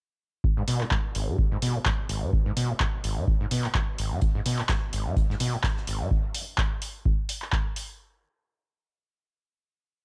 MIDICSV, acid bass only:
0, 0, Header, 1, 2, 480
1, 0, Start_track
1, 0, Key_signature, 5, "minor"
1, 0, Tempo, 472441
1, 448, Time_signature, 4, 2, 24, 8
1, 10208, End_track
2, 0, Start_track
2, 0, Title_t, "Acid bass"
2, 0, Program_c, 0, 38
2, 581, Note_on_c, 0, 44, 76
2, 640, Note_off_c, 0, 44, 0
2, 688, Note_on_c, 0, 47, 96
2, 821, Note_on_c, 0, 44, 70
2, 836, Note_off_c, 0, 47, 0
2, 857, Note_off_c, 0, 44, 0
2, 928, Note_on_c, 0, 44, 79
2, 972, Note_off_c, 0, 44, 0
2, 1169, Note_on_c, 0, 32, 72
2, 1302, Note_on_c, 0, 44, 73
2, 1317, Note_off_c, 0, 32, 0
2, 1390, Note_off_c, 0, 44, 0
2, 1541, Note_on_c, 0, 44, 75
2, 1600, Note_off_c, 0, 44, 0
2, 1648, Note_on_c, 0, 47, 100
2, 1781, Note_on_c, 0, 44, 73
2, 1796, Note_off_c, 0, 47, 0
2, 1817, Note_off_c, 0, 44, 0
2, 1889, Note_on_c, 0, 44, 83
2, 1932, Note_off_c, 0, 44, 0
2, 2128, Note_on_c, 0, 32, 79
2, 2262, Note_on_c, 0, 44, 75
2, 2277, Note_off_c, 0, 32, 0
2, 2350, Note_off_c, 0, 44, 0
2, 2501, Note_on_c, 0, 44, 76
2, 2560, Note_off_c, 0, 44, 0
2, 2608, Note_on_c, 0, 47, 99
2, 2740, Note_on_c, 0, 44, 74
2, 2756, Note_off_c, 0, 47, 0
2, 2776, Note_off_c, 0, 44, 0
2, 2847, Note_on_c, 0, 44, 80
2, 2892, Note_off_c, 0, 44, 0
2, 3087, Note_on_c, 0, 32, 79
2, 3221, Note_on_c, 0, 44, 76
2, 3236, Note_off_c, 0, 32, 0
2, 3309, Note_off_c, 0, 44, 0
2, 3461, Note_on_c, 0, 44, 74
2, 3520, Note_off_c, 0, 44, 0
2, 3568, Note_on_c, 0, 47, 104
2, 3702, Note_on_c, 0, 44, 72
2, 3717, Note_off_c, 0, 47, 0
2, 3737, Note_off_c, 0, 44, 0
2, 3809, Note_on_c, 0, 44, 84
2, 3852, Note_off_c, 0, 44, 0
2, 4049, Note_on_c, 0, 32, 79
2, 4181, Note_on_c, 0, 44, 76
2, 4197, Note_off_c, 0, 32, 0
2, 4270, Note_off_c, 0, 44, 0
2, 4422, Note_on_c, 0, 44, 73
2, 4480, Note_off_c, 0, 44, 0
2, 4528, Note_on_c, 0, 47, 101
2, 4662, Note_on_c, 0, 44, 74
2, 4677, Note_off_c, 0, 47, 0
2, 4697, Note_off_c, 0, 44, 0
2, 4769, Note_on_c, 0, 44, 79
2, 4812, Note_off_c, 0, 44, 0
2, 5008, Note_on_c, 0, 32, 75
2, 5142, Note_on_c, 0, 44, 73
2, 5157, Note_off_c, 0, 32, 0
2, 5230, Note_off_c, 0, 44, 0
2, 5382, Note_on_c, 0, 44, 74
2, 5441, Note_off_c, 0, 44, 0
2, 5489, Note_on_c, 0, 47, 101
2, 5623, Note_on_c, 0, 44, 73
2, 5638, Note_off_c, 0, 47, 0
2, 5657, Note_off_c, 0, 44, 0
2, 5729, Note_on_c, 0, 44, 82
2, 5772, Note_off_c, 0, 44, 0
2, 5969, Note_on_c, 0, 32, 76
2, 6101, Note_on_c, 0, 44, 80
2, 6117, Note_off_c, 0, 32, 0
2, 6190, Note_off_c, 0, 44, 0
2, 10208, End_track
0, 0, End_of_file